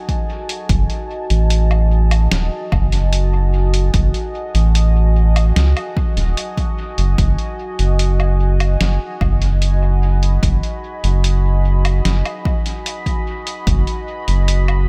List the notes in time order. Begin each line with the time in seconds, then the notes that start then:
Already playing: F#4 D#5 G#5 A5
0.09 kick, closed hi-hat
0.49 closed hi-hat
0.69 F#1, kick, closed hi-hat
0.90 closed hi-hat
1.30 A1, closed hi-hat
1.50 closed hi-hat
1.71 low woodblock
2.11 closed hi-hat, low woodblock
2.32 D#1, snare, closed hi-hat
2.72 F#1, kick, low woodblock
2.92 closed hi-hat
3.13 closed hi-hat
3.74 closed hi-hat
3.94 F#1, kick, closed hi-hat
4.14 closed hi-hat
4.55 A1, closed hi-hat
4.75 closed hi-hat
5.36 closed hi-hat, low woodblock
5.56 C#2, snare, closed hi-hat
5.77 closed hi-hat, low woodblock
5.97 kick
6.17 D#1, closed hi-hat
6.37 closed hi-hat
6.58 kick, closed hi-hat
6.98 F#1, closed hi-hat
7.18 F#1, kick, closed hi-hat
7.38 closed hi-hat
7.79 F#1, closed hi-hat
7.99 closed hi-hat
8.20 low woodblock
8.60 closed hi-hat, low woodblock
8.81 F#1, snare, closed hi-hat
9.21 F#1 B5, kick, low woodblock
9.42 closed hi-hat
9.62 closed hi-hat
10.23 closed hi-hat
10.43 F#1, kick, closed hi-hat
10.63 closed hi-hat
11.04 F#1, closed hi-hat
11.24 closed hi-hat
11.85 closed hi-hat, low woodblock
12.05 F#1, snare, closed hi-hat
12.25 closed hi-hat, low woodblock
12.45 kick
12.66 closed hi-hat
12.86 closed hi-hat
13.06 kick, closed hi-hat
13.47 closed hi-hat
13.67 F#1, kick, closed hi-hat
13.87 closed hi-hat
14.28 F#1, closed hi-hat
14.48 closed hi-hat
14.68 low woodblock